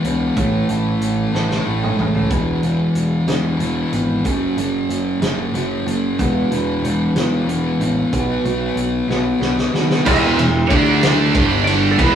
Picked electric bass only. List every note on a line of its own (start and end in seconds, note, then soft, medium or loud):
0.04 0.28 C#2 medium
0.37 0.61 A1 medium
0.69 0.93 A1 medium
1.00 1.24 A1 medium
1.33 1.57 A1 medium
1.67 1.90 A1 medium
1.99 2.23 A1 medium
2.30 2.54 E1 medium
2.63 2.87 E1 medium
2.95 3.19 E1 medium
3.26 3.51 E1 medium
3.59 3.83 E1 medium
3.92 4.25 G#1 medium
4.25 4.49 F#1 medium
4.56 4.81 F#1 medium
4.89 5.13 F#1 medium
5.20 5.45 F#1 medium
5.52 5.77 F#1 medium
5.85 6.10 F#1 medium
6.19 6.43 E1 medium
6.49 6.74 E1 medium
6.82 7.07 E1 medium
7.14 7.39 E1 medium
7.47 7.71 E1 medium
7.78 8.02 A1 medium
8.13 8.36 B1 medium
8.43 8.67 B1 medium
8.74 8.99 B1 medium
9.07 9.32 B1 medium
9.40 9.64 B1 medium
9.72 9.96 D#2 medium
10.06 10.36 E1 loud
10.36 10.67 E1 medium
10.70 11.30 D2 medium
11.35 11.95 G1 loud
11.98 12.15 E1 loud